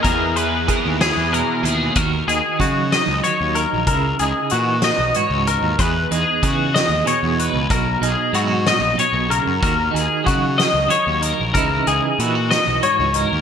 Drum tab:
HH |xxxxxx|xxxxxx|xxxxxx|xxxxxx|
SD |---o--|---o--|---o--|---o--|
BD |o-o---|o-o---|o-----|o-o---|

HH |xxxxxx|xxxxxx|xxxxxx|
SD |---o--|---o--|---o--|
BD |o-----|o-o---|o-----|